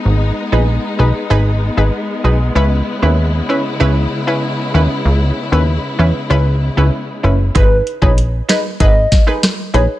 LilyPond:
<<
  \new Staff \with { instrumentName = "Soft synth lead" } { \time 4/4 \key gis \minor \tempo 4 = 96 r1 | r1 | r1 | b'8 r16 cis''16 r8 dis''16 r16 dis''8. r8. cis''16 r16 | }
  \new Staff \with { instrumentName = "Synth pluck" } { \time 4/4 \key gis \minor r8. <dis' gis' b'>16 r8 <dis' gis' b'>16 r16 <dis' gis' b'>16 r8 <dis' gis' b'>16 r8 <dis' gis' b'>16 r16 | <cis' e' b'>8. <cis' e' b'>16 r8 <cis' e' b'>16 r16 <cis' e' b'>16 r8 <cis' e' b'>16 r8 <cis' e' b'>16 r16 | r8. <cis' e' b'>16 r8 <cis' e' b'>16 r16 <cis' e' b'>16 r8 <cis' e' b'>16 r8 <cis' e' b'>16 r16 | <dis' gis' b'>8. <dis' gis' b'>16 r8 <dis' gis' b'>16 r16 <dis' gis' b'>16 r8 <dis' gis' b'>16 r8 <dis' gis' b'>16 r16 | }
  \new Staff \with { instrumentName = "String section" } { \time 4/4 \key gis \minor << { dis'1 | <cis e'>1~ | <cis e'>1 | r1 | } \\ { <gis b>1~ | <gis b>1~ | <gis b>1 | r1 | } >> }
  \new Staff \with { instrumentName = "Analog synth bass" } { \clef bass \time 4/4 \key gis \minor gis,,8 r16 ais,,8 r16 b,,16 r16 gis,,8. gis,,16 r8 b,,8 | cis,8 r16 dis,8. r8 cis,8 r4 dis,16 r16 | cis,8 r16 dis,8 r16 e,16 r16 cis,8. cis,16 r8 fis,,8 | gis,,8 r16 ais,,8. r8 gis,,8 r4 ais,,16 r16 | }
  \new DrumStaff \with { instrumentName = "Drums" } \drummode { \time 4/4 r4 r4 r4 r4 | r4 r4 r4 r4 | r4 r4 r4 r4 | <hh bd>8 hh16 bd16 hh8 <hh ss sn>8 <hh bd>8 <hh bd sn>16 ss16 <hh ss sn>8 hh8 | }
>>